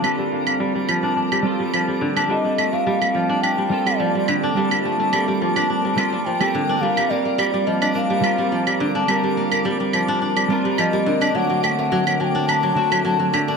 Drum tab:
CL |x--x--x--x--x--x|--x--x--x--x--x-|-x--x--x--x--x--|-x--x--x--x--x--|

CL |x--x--x--x--x--x|--x--x--x--x--x-|